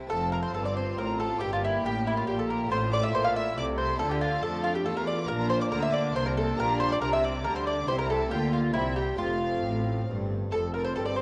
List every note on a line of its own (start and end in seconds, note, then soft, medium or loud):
0.00 0.11 E4 soft
0.07 0.51 F1 medium
0.07 0.51 F2 medium
0.07 0.51 A3 medium
0.07 0.52 C4 medium
0.07 0.51 C4 medium
0.07 1.37 C4 medium
0.07 1.37 F4 medium
0.07 0.30 A4 medium
0.07 0.30 A5 loud
0.12 0.51 F2 medium
0.32 0.42 A#4 medium
0.32 0.36 A#5 loud
0.43 0.53 C5 medium
0.43 0.54 C6 medium
0.54 0.96 G1 medium
0.54 0.97 G2 medium
0.54 0.95 G2 medium
0.54 1.41 F4 medium
0.54 0.64 A4 medium
0.54 0.65 A5 loud
0.65 0.75 D5 medium
0.65 0.76 D6 medium
0.76 0.96 C5 medium
0.76 0.98 C6 medium
0.97 1.40 A1 medium
0.97 1.40 A2 medium
0.97 1.37 A2 medium
0.97 1.18 A#4 medium
0.97 1.19 A#5 loud
1.18 1.40 A4 medium
1.18 1.40 A5 loud
1.37 1.83 G1 medium
1.37 1.83 G2 medium
1.37 1.81 A#3 medium
1.37 2.68 A#3 medium
1.37 1.82 C4 medium
1.37 2.66 E4 medium
1.37 1.51 G4 medium
1.37 1.51 G5 loud
1.42 1.81 G2 medium
1.42 2.26 G4 medium
1.52 1.62 F4 medium
1.52 1.56 F5 medium
1.63 1.84 E4 medium
1.63 1.71 E5 medium
1.83 2.26 A1 medium
1.83 2.26 A2 medium
1.83 2.24 A2 medium
1.83 2.05 G4 medium
1.83 2.05 G5 loud
2.06 2.17 E4 medium
2.06 2.17 E5 medium
2.17 2.27 F4 medium
2.17 2.28 F5 medium
2.27 2.70 A#1 medium
2.27 2.70 A#2 medium
2.27 2.67 A#2 medium
2.27 2.70 G4 medium
2.27 2.37 G4 medium
2.27 2.39 G5 loud
2.39 2.49 A4 medium
2.39 2.49 A5 loud
2.49 2.70 A#4 medium
2.49 2.70 A#5 medium
2.67 3.13 A1 medium
2.67 3.94 A3 medium
2.67 3.95 C4 medium
2.67 3.96 F4 medium
2.67 3.14 F4 medium
2.67 2.78 C6 loud
2.71 3.13 A2 medium
2.71 3.10 A2 medium
2.71 3.55 A3 medium
2.71 2.91 C5 loud
2.91 3.03 D5 loud
2.91 3.02 D6 loud
3.03 3.13 E5 medium
3.03 3.14 E6 medium
3.12 3.56 A#1 medium
3.12 3.56 A#2 medium
3.12 3.53 A#2 medium
3.12 4.00 E4 medium
3.12 3.24 C5 medium
3.12 3.24 C6 loud
3.24 3.35 F5 medium
3.24 3.36 F6 loud
3.34 3.56 E5 loud
3.34 3.56 E6 loud
3.56 3.99 C2 medium
3.56 3.96 C3 medium
3.56 3.99 C3 medium
3.56 3.99 A3 medium
3.56 3.77 D5 medium
3.56 3.64 D6 loud
3.76 3.98 C5 medium
3.76 3.98 C6 loud
3.95 4.81 A3 medium
3.95 5.24 D4 medium
3.95 5.24 F4 medium
3.95 4.10 A5 loud
3.99 4.42 D2 medium
3.99 4.39 D3 medium
3.99 4.42 D3 medium
3.99 4.42 A3 medium
3.99 4.42 D4 medium
3.99 4.10 A4 loud
4.09 4.21 G4 medium
4.09 4.14 G5 medium
4.19 4.41 F4 medium
4.19 4.41 F5 loud
4.39 4.85 F2 medium
4.39 4.82 F3 medium
4.39 4.63 A4 medium
4.39 4.63 A5 loud
4.43 4.86 F3 medium
4.43 4.85 A3 medium
4.43 4.86 D4 medium
4.62 4.74 F4 medium
4.62 4.74 F5 loud
4.73 4.85 G4 medium
4.73 4.85 G5 medium
4.85 5.28 E2 medium
4.85 5.25 E3 medium
4.85 5.28 E3 medium
4.85 5.28 A3 medium
4.85 5.29 F4 medium
4.85 4.96 A4 medium
4.85 4.96 A5 loud
4.97 5.07 A#4 medium
4.97 5.07 A#5 medium
5.06 5.27 D5 medium
5.06 5.28 D6 loud
5.24 6.52 A#3 medium
5.24 6.53 D4 medium
5.24 6.54 F4 medium
5.24 5.50 A#5 loud
5.28 5.69 A#1 loud
5.28 5.68 A#2 medium
5.28 5.69 A#2 loud
5.28 5.69 A#3 medium
5.28 5.69 D4 medium
5.28 5.49 A#4 loud
5.49 5.60 C5 loud
5.49 5.54 C6 loud
5.61 5.71 D5 loud
5.61 5.65 D6 loud
5.69 6.15 D2 medium
5.69 6.11 D3 medium
5.69 6.15 D3 medium
5.69 6.57 A#3 medium
5.69 6.56 D4 medium
5.69 5.82 A#4 medium
5.69 5.81 A#5 loud
5.82 5.93 E5 medium
5.82 5.93 E6 loud
5.90 6.14 D5 medium
5.90 6.14 D6 loud
6.13 6.58 C2 loud
6.13 6.57 C3 medium
6.13 6.55 C3 medium
6.13 6.26 C5 loud
6.13 6.25 C6 loud
6.25 6.36 A#4 medium
6.25 6.37 A#5 loud
6.36 6.57 A4 medium
6.36 6.58 A5 loud
6.54 7.01 A#2 loud
6.54 7.01 G3 medium
6.54 7.83 A#3 medium
6.54 7.83 D4 medium
6.54 7.01 D4 medium
6.54 7.84 G4 medium
6.54 6.80 A#5 loud
6.59 7.02 A#1 loud
6.59 6.98 A#2 medium
6.59 6.80 A#4 loud
6.79 6.90 C5 loud
6.79 6.91 C6 loud
6.91 7.01 D5 medium
6.91 7.02 D6 loud
7.01 7.45 C2 medium
7.01 7.44 C3 medium
7.01 7.42 C3 medium
7.01 7.44 G3 medium
7.01 7.44 D4 medium
7.01 7.12 A#4 loud
7.01 7.12 A#5 loud
7.13 7.23 E5 medium
7.13 7.24 E6 loud
7.22 7.44 D5 medium
7.22 7.45 D6 loud
7.44 7.89 D2 medium
7.44 7.88 D3 medium
7.44 7.86 D3 medium
7.44 7.88 G3 medium
7.44 7.88 D4 medium
7.44 7.55 A#4 medium
7.44 7.55 A#5 loud
7.56 7.66 C5 medium
7.56 7.68 C6 medium
7.66 7.87 D5 medium
7.66 7.88 D6 loud
7.86 8.31 C2 loud
7.86 8.31 C3 medium
7.86 8.28 C3 medium
7.86 8.29 E4 medium
7.86 8.30 G4 medium
7.86 7.98 C5 loud
7.86 7.99 C6 loud
7.90 7.98 G3 medium
7.90 8.33 E4 medium
7.99 8.09 A#4 medium
7.99 8.10 A#5 loud
8.10 8.31 A3 medium
8.10 8.30 A4 medium
8.10 8.32 A5 loud
8.29 8.75 D2 medium
8.29 8.74 D3 medium
8.29 8.73 A#3 medium
8.29 8.74 A#3 medium
8.29 8.73 F4 medium
8.29 8.75 F4 medium
8.29 8.52 G4 medium
8.29 8.52 G5 loud
8.33 8.72 D3 medium
8.53 8.73 F4 medium
8.53 8.61 F5 medium
8.73 9.19 C2 medium
8.73 9.16 C3 medium
8.73 9.19 C3 medium
8.73 9.20 G3 medium
8.73 9.14 C4 medium
8.73 8.95 E4 medium
8.73 9.18 G4 medium
8.73 8.96 E5 loud
8.77 9.21 C4 medium
8.96 9.17 G4 medium
8.96 9.20 G5 loud
9.15 10.03 A3 medium
9.15 10.04 C4 medium
9.15 10.47 F4 medium
9.15 10.04 F4 medium
9.19 9.63 F1 medium
9.19 9.60 F2 medium
9.19 9.63 F2 medium
9.19 10.30 A3 medium
9.19 10.31 C4 medium
9.19 10.07 F5 loud
9.64 10.07 A1 medium
9.64 10.04 A2 medium
9.64 10.08 A2 medium
10.08 10.52 G1 medium
10.08 10.52 G2 medium
10.08 10.49 G2 medium
10.51 10.93 F1 medium
10.51 10.93 F2 medium
10.51 11.22 C4 medium
10.51 10.73 A4 medium
10.51 10.61 A4 medium
10.51 10.59 A5 loud
10.74 10.98 A4 medium
10.74 10.84 A#4 medium
10.74 10.85 A#4 medium
10.74 10.78 A#5 loud
10.84 10.95 C5 medium
10.84 10.96 C5 medium
10.84 10.90 C6 medium
10.95 11.22 G1 medium
10.95 11.22 G2 medium
10.95 11.18 G4 soft
10.95 11.06 A4 medium
10.95 11.05 A4 medium
10.95 11.00 A5 loud
11.06 11.16 D5 medium
11.06 11.18 D5 medium
11.06 11.18 D6 medium
11.16 11.22 A4 medium
11.16 11.22 C5 medium
11.16 11.22 C6 medium